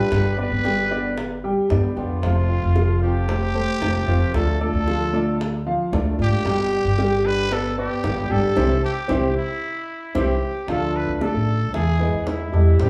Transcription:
Already playing: grand piano G3 G4 G5, steel-string acoustic guitar A3 D4, trumpet B4
0.10 upright bass G1, steel-string acoustic guitar B2 D3 G3 B3 G4, high bongo
0.37 steel-string acoustic guitar G3 B3 G4, grand piano B3 B4 D5, trumpet B4, high bongo
0.52 upright bass G1
0.64 grand piano G3 G4 G5, high bongo
0.91 steel-string acoustic guitar D3 G3 B3 G4, grand piano B3 B4 D5, high bongo
1.16 muted steel-string acoustic guitar stroke, high bongo
1.44 grand piano G3 G4 G5
1.68 upright bass G2, steel-string acoustic guitar D3 G3 B3 G4, grand piano B3 B4 D5, high bongo, low bongo
1.96 upright bass F2, steel-string acoustic guitar D3 G3 B3 G4, trumpet F4, high bongo
2.21 upright bass F1, steel-string acoustic guitar C3 F3 A3 C4 F4, grand piano F3 F4 F5, high bongo
2.48 steel-string acoustic guitar A3 C4 F4
2.63 upright bass F1
2.75 grand piano F3 F4 F5, high bongo
3.02 steel-string acoustic guitar F3 A3 C4 F4, trumpet G4
3.28 grand piano A3 A4 C5, muted steel-string acoustic guitar stroke, high bongo
3.54 grand piano A3 A4 C5
3.81 upright bass F1, steel-string acoustic guitar F3 A3 C4 F4, high bongo, low bongo
4.07 upright bass F1, grand piano F3 F4 F5, steel-string acoustic guitar F3 A3 C4 F4
4.34 upright bass D2, steel-string acoustic guitar D3 A3 D4 F4, trumpet A4, high bongo
4.60 grand piano A3 A4 D5, steel-string acoustic guitar A3 D4 F4, trumpet A4, high bongo
4.73 upright bass D2
4.87 grand piano F3 F4 F5, high bongo
5.13 grand piano A3 A4 D5, steel-string acoustic guitar A3 D4 F4, high bongo
5.39 muted steel-string acoustic guitar stroke, high bongo
5.66 grand piano F3 F4 F5
5.91 upright bass D2, steel-string acoustic guitar D3 A3 D4 F4, grand piano A3 A4 D5, high bongo, low bongo
6.18 upright bass G#1, steel-string acoustic guitar A3 D4 F4, trumpet G4, high bongo
6.43 upright bass G1, steel-string acoustic guitar B2 D3 G3 B3 G4, grand piano G3 G4 G5, high bongo
6.71 steel-string acoustic guitar G3 B3 G4
6.85 upright bass G1
6.98 grand piano G3 G4 G5, high bongo
7.23 steel-string acoustic guitar D3 G3 B3 G4, trumpet B4
7.50 grand piano B3 B4 D5, trumpet A4, muted steel-string acoustic guitar stroke, high bongo
7.78 grand piano B3 B4 D5, trumpet G4
8.03 upright bass G1, steel-string acoustic guitar D3 G3 B3 G4, high bongo, low bongo
8.29 upright bass G1, steel-string acoustic guitar D3 G3 B3 G4, grand piano G3 G4 G5, trumpet A4
8.56 upright bass C2, steel-string acoustic guitar E3 G3 C4, grand piano E4 G4 C5, low bongo
8.85 trumpet G4
9.08 upright bass C2, steel-string acoustic guitar E3 G3 C4, grand piano E4 G4 C5, low bongo
9.38 trumpet E4
10.15 upright bass C2, steel-string acoustic guitar E3 G3 C4, grand piano E4 G4 C5, trumpet G4, low bongo
10.67 upright bass D2, steel-string acoustic guitar D3 A3 D4 F4, grand piano F3 F4 F5, trumpet A4, high bongo
10.96 trumpet B4
11.08 upright bass D2
11.16 trumpet B4
11.21 grand piano A3 A4 D5, trumpet A4, high bongo
11.35 upright bass A1
11.72 upright bass E2, grand piano E3 E4 E5, trumpet G#4, muted steel-string acoustic guitar stroke, high bongo
11.98 steel-string acoustic guitar E3 G#3 B3 E4, grand piano G#3 G#4 B4
12.13 upright bass E2
12.25 steel-string acoustic guitar E3 G#3 B3 E4, trumpet E4, high bongo, low bongo
12.52 upright bass E2, steel-string acoustic guitar E3 G#3 B3 E4, grand piano G3 G4 A4
12.78 upright bass A1, steel-string acoustic guitar E3 G3 C4 E4, trumpet G4, high bongo

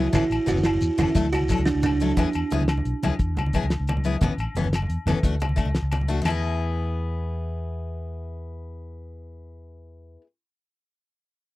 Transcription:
Already playing: kalimba F#4
0.13 fingered electric bass A1, steel-string acoustic guitar E3 B3 C#4 A4, kalimba E4, kick, closed hi-hat, high conga, low conga, low agogo, shekere
0.30 fingered electric bass A1, closed hi-hat, low agogo
0.46 fingered electric bass F#1, steel-string acoustic guitar E3 B3 C#4, kalimba F#4, muted steel-string acoustic guitar stroke, closed hi-hat, low conga, shekere
0.56 high conga, low conga, shekere
0.63 kalimba E4, snare, closed hi-hat, low agogo
0.74 low conga
0.81 fingered electric bass E2, closed hi-hat, low conga, shekere
0.98 fingered electric bass F#1, steel-string acoustic guitar E3 B3 C#4 A4, kalimba E4, closed hi-hat, high conga, low conga, low agogo, shekere
1.08 low conga
1.15 fingered electric bass D2, steel-string acoustic guitar F#3 A3 D4 A4, kick, closed hi-hat, shekere
1.24 low conga
1.32 fingered electric bass C#2, kalimba F#4, closed hi-hat, low conga, low agogo
1.41 high conga, low conga
1.49 steel-string acoustic guitar F#3 D4 A4, muted steel-string acoustic guitar stroke, kick, closed hi-hat, low conga, low agogo, shekere
1.58 fingered electric bass C#2, low conga
1.65 kalimba D4, snare, closed hi-hat
1.75 fingered electric bass C#2, low conga
1.83 kalimba D4, closed hi-hat, high conga, low agogo, shekere
1.92 low conga
2.00 steel-string acoustic guitar F#3 A3 D4 A4, closed hi-hat
2.17 fingered electric bass E2, steel-string acoustic guitar F#3 B3 E4 G#4, kick, closed hi-hat, high conga, low conga, low agogo
2.33 fingered electric bass E2, closed hi-hat, low agogo
2.50 fingered electric bass C#2, steel-string acoustic guitar F#3 B3 E4 G#4, closed hi-hat, low conga
2.61 high conga, low conga
2.68 snare, closed hi-hat, low agogo
2.78 low conga
2.85 fingered electric bass B1, closed hi-hat, low conga
3.03 fingered electric bass C#2, steel-string acoustic guitar F#3 B3 E4 G#4, closed hi-hat, high conga, low conga, low agogo
3.19 fingered electric bass E2, kick, closed hi-hat
3.29 low conga
3.36 fingered electric bass C#2, closed hi-hat, low conga, low agogo
3.46 high conga, low conga
3.53 steel-string acoustic guitar F#3 B3 E4 G#4, kick, closed hi-hat, low agogo
3.63 fingered electric bass C#2, low conga
3.70 snare, closed hi-hat
3.80 fingered electric bass C#2
3.87 closed hi-hat, high conga, low agogo
3.97 low conga
4.04 steel-string acoustic guitar F#3 B3 E4 G#4, closed hi-hat
4.21 fingered electric bass A1, steel-string acoustic guitar E3 B3 C#4, muted steel-string acoustic guitar stroke, kick, closed hi-hat, high conga, low conga, low agogo
4.38 fingered electric bass A1, closed hi-hat, low agogo
4.55 fingered electric bass F#1, steel-string acoustic guitar E3 B3 C#4, closed hi-hat, low conga
4.64 high conga, low conga
4.73 snare, closed hi-hat, low conga, low agogo
4.82 low conga
4.89 fingered electric bass E2, closed hi-hat
5.06 fingered electric bass F#1, steel-string acoustic guitar E3 B3 C#4 A4, closed hi-hat, high conga, low conga, low agogo
5.15 low conga
5.23 fingered electric bass D2, steel-string acoustic guitar A3 D4 F#4, kick, closed hi-hat
5.32 low conga
5.40 fingered electric bass C#2, closed hi-hat, low conga, low agogo
5.49 high conga
5.56 steel-string acoustic guitar A3 D4 F#4, kick, closed hi-hat, low conga, low agogo
5.65 fingered electric bass C#2, low conga
5.75 snare, closed hi-hat
5.82 fingered electric bass C#2
5.92 closed hi-hat, high conga, low conga, low agogo
6.01 low conga
6.08 steel-string acoustic guitar A3 D4 F#4, closed hi-hat
6.22 fingered electric bass E2, steel-string acoustic guitar B3, muted steel-string acoustic guitar stroke, snare, crash
6.26 steel-string acoustic guitar E4, high conga, low agogo
6.30 steel-string acoustic guitar G#4

